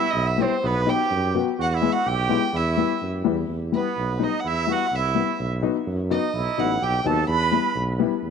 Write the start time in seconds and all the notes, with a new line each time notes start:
Already playing: E4 E5
0.10 B1 D#5
0.27 E5
0.38 G3 B3 C4 E4
0.43 C5
0.62 B1 B3 B4
0.86 F#3 B3 D#4 G4 G5
1.11 F#2
1.34 F#3 B3 F#4
1.59 E2 F#4 F#5
1.71 E4 F#5
1.77 E5
1.82 G#3 B3 E4
1.92 F#4 F#5
2.06 B1 G4 G5
2.29 G#3 B3 E4
2.54 E2 E4 E5
2.77 G3 B3 E4
3.01 F#2
3.24 E2 G3 B3 E4
3.49 E2
3.72 G3 B3 E4 B4
3.97 B1
4.19 G3 B3 D#4
4.24 D#5
4.40 E4 F#5
4.44 E2 E5
4.67 G3 B3 E4 F#4
4.72 F#5
4.92 C2 E4 E5
5.15 G3 B3 E4
5.39 B1
5.62 F#3 B3 D#4
5.87 F#2
6.10 F#3 B3 D#4 D#5
6.33 B1 E4
6.58 A1 F#3 B3 D#4 F#5
6.82 B1 G4 G5
7.04 D#2 F#3 B3 D#4 A4 A5
7.28 E2 B4 B5
7.52 G3 B3 E4
7.75 B1
7.99 G3 B3 E4
8.22 E2